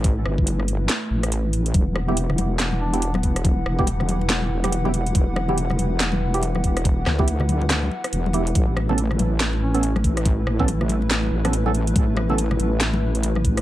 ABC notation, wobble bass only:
X:1
M:4/4
L:1/8
Q:"Swing 16ths" 1/4=141
K:Em
V:1 name="Wobble bass" clef=bass
A,,, G,,,3 z A,,,3 | E,,,3 E,,,4- E,,,- | E,,, E,,,4 E,,,3 | E,,,3 E,,,4- E,,,- |
E,,, D,,4 z E,,,2 | A,,,3 A,,,4- A,,,- | A,,, A,,,4 A,,,3 | A,,,3 A,,,4- A,,, |]